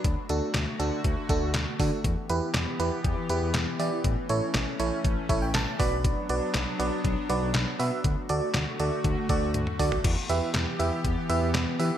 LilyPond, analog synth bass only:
\new Staff \with { instrumentName = "Analog synth bass" } { \clef bass \time 4/4 \key e \dorian \tempo 4 = 120 d,16 r16 d,16 r16 d,16 r16 d,16 r16 d,16 r16 d,16 d,16 d,16 r16 d16 r16 | e,16 r16 e,16 r16 e,16 r16 e,16 r16 e,16 r16 e,16 e,16 e,16 r16 e16 r16 | a,,16 r16 a,,16 r16 a,,16 r16 a,,16 r16 a,,16 r16 a,,16 a,,16 a,,16 r16 b,,8~ | b,,16 r16 b,,16 r16 b,,16 r16 b,,16 r16 b,,16 r16 b,,16 b,,16 b,,16 r16 b,16 r16 |
d,16 r16 d,16 r16 d,16 r16 d,16 r16 d,16 r16 d,16 d,16 d,16 r16 d16 r16 | e,16 r16 e,16 r16 e,16 r16 e,16 r16 e,16 r16 e,16 e,16 e,16 r16 e16 r16 | }